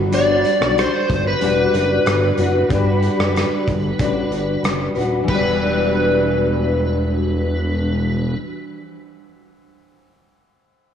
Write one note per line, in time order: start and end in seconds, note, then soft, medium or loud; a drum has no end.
0.00 0.44 G1 loud
0.00 0.12 D4 soft
0.00 0.13 F#4 medium
0.00 0.12 B4 medium
0.11 1.40 G3 medium
0.11 1.42 D4 medium
0.11 1.43 F#4 medium
0.11 0.79 D5 medium
0.11 closed hi-hat medium
0.44 closed hi-hat soft
0.61 0.86 B1 medium
0.61 cross-stick medium
0.78 1.27 C5 medium
0.78 cross-stick medium
0.78 closed hi-hat medium
1.10 1.35 G1 loud
1.10 kick medium
1.10 closed hi-hat soft
1.27 4.61 B4 medium
1.40 1.68 E1 medium
1.40 2.42 G3 medium
1.40 2.41 D4 medium
1.40 2.39 F#4 medium
1.40 2.37 B4 medium
1.40 closed hi-hat medium
1.74 1.99 F#1 medium
1.74 closed hi-hat soft
2.06 2.31 G1 medium
2.06 cross-stick medium
2.06 closed hi-hat medium
2.37 2.64 F#1 medium
2.37 2.70 D4 medium
2.37 2.71 F#4 medium
2.37 2.70 B4 medium
2.37 closed hi-hat soft
2.69 3.09 G1 medium
2.69 3.98 G3 medium
2.69 4.00 D4 medium
2.69 kick loud
2.69 closed hi-hat medium
2.73 4.01 F#4 medium
2.73 4.02 B4 medium
3.02 closed hi-hat soft
3.19 3.45 F#1 medium
3.19 cross-stick medium
3.36 cross-stick medium
3.36 closed hi-hat medium
3.68 3.93 G1 medium
3.68 kick medium
3.68 closed hi-hat soft
3.99 4.25 A1 medium
3.99 5.00 G3 medium
3.99 4.99 D4 medium
3.99 4.97 F#4 medium
3.99 4.95 B4 medium
3.99 kick medium
3.99 closed hi-hat medium
4.31 4.57 G1 medium
4.31 closed hi-hat soft
4.63 4.89 F#1 medium
4.63 cross-stick medium
4.63 closed hi-hat medium
4.95 5.22 D#1 loud
4.95 5.30 D4 soft
4.95 5.29 F#4 soft
4.95 5.28 B4 medium
4.95 closed hi-hat soft
5.24 8.74 E3 medium
5.28 8.35 E1 loud
5.28 8.80 G3 medium
5.28 8.36 B4 medium
5.28 kick medium
5.28 ride medium
5.34 8.84 D4 medium
5.39 8.89 F#4 medium